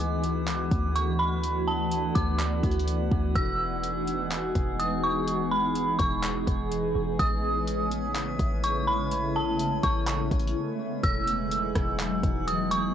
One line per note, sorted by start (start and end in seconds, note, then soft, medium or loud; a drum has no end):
0.00 0.49 D2 loud
0.00 7.15 E3 medium
0.00 3.32 A3 medium
0.00 10.99 B3 medium
0.00 3.32 D4 medium
0.00 3.32 E4 medium
0.00 5.23 F#4 medium
0.00 3.32 B4 medium
0.00 7.16 F#5 medium
0.00 0.92 D6 loud
0.00 closed hi-hat medium
0.24 closed hi-hat medium
0.47 0.61 C#2 loud
0.47 clap loud
0.47 closed hi-hat medium
0.59 0.71 D2 loud
0.71 2.11 D2 loud
0.71 kick loud
0.71 closed hi-hat medium
0.96 1.18 C#6 medium
0.96 closed hi-hat medium
1.19 1.42 B5 medium
1.44 closed hi-hat medium
1.68 2.13 A5 medium
1.91 closed hi-hat medium
2.15 2.62 D2 loud
2.15 2.38 D6 medium
2.15 kick medium
2.15 closed hi-hat medium
2.40 clap loud
2.40 closed hi-hat medium
2.63 3.09 D2 loud
2.63 kick loud
2.63 closed hi-hat medium
2.71 closed hi-hat soft
2.79 closed hi-hat soft
2.88 closed hi-hat medium
3.11 3.35 D2 loud
3.11 kick medium
3.35 4.51 E1 loud
3.35 7.16 G#3 medium
3.35 7.16 D#4 medium
3.35 7.16 G#4 medium
3.35 4.75 E6 loud
3.35 kick loud
3.35 closed hi-hat medium
3.83 closed hi-hat medium
4.07 closed hi-hat medium
4.32 clap loud
4.32 closed hi-hat medium
4.55 5.95 E1 loud
4.55 kick loud
4.55 closed hi-hat medium
4.79 5.02 D#6 medium
4.79 closed hi-hat medium
5.03 5.26 C#6 medium
5.28 7.18 G#4 loud
5.28 closed hi-hat medium
5.51 5.97 B5 medium
5.75 closed hi-hat medium
5.99 6.46 E1 loud
5.99 6.22 C#6 medium
5.99 kick medium
5.99 closed hi-hat medium
6.24 clap loud
6.24 closed hi-hat medium
6.47 6.94 E1 loud
6.47 kick loud
6.47 closed hi-hat medium
6.72 closed hi-hat medium
6.95 7.19 E1 loud
7.19 8.17 A1 loud
7.19 11.00 C#3 medium
7.19 11.00 G#3 medium
7.19 11.00 A3 medium
7.19 11.00 C#4 medium
7.19 11.00 E4 medium
7.19 11.00 B4 medium
7.19 8.59 D#6 loud
7.19 11.00 G#6 medium
7.19 kick loud
7.19 closed hi-hat medium
7.67 closed hi-hat medium
7.91 closed hi-hat medium
8.15 8.29 G#1 medium
8.15 clap loud
8.15 closed hi-hat medium
8.27 8.39 A1 loud
8.39 9.79 A1 loud
8.39 kick loud
8.39 closed hi-hat medium
8.64 8.86 C#6 medium
8.64 closed hi-hat medium
8.87 9.10 B5 medium
9.12 closed hi-hat medium
9.36 9.81 A5 medium
9.60 closed hi-hat medium
9.83 10.30 A1 loud
9.83 10.06 C#6 medium
9.83 kick medium
9.83 closed hi-hat medium
10.08 clap loud
10.08 closed hi-hat medium
10.31 10.54 A1 medium
10.31 kick loud
10.31 closed hi-hat soft
10.40 closed hi-hat soft
10.47 closed hi-hat soft
11.03 11.73 E1 loud
11.03 12.94 E3 medium
11.03 12.94 F#3 medium
11.03 12.94 G#3 medium
11.03 12.94 B3 medium
11.03 12.94 D#4 medium
11.03 12.94 D#4 loud
11.03 12.94 G#4 medium
11.03 12.94 F#5 medium
11.03 12.44 E6 loud
11.03 kick loud
11.03 closed hi-hat medium
11.27 closed hi-hat medium
11.51 closed hi-hat medium
11.75 12.22 E1 loud
11.75 kick medium
11.75 cross-stick medium
11.75 closed hi-hat medium
12.00 clap loud
12.00 closed hi-hat medium
12.23 12.94 E1 loud
12.23 kick loud
12.23 closed hi-hat medium
12.48 12.70 D#6 medium
12.48 closed hi-hat medium
12.71 12.94 C#6 medium
12.71 closed hi-hat medium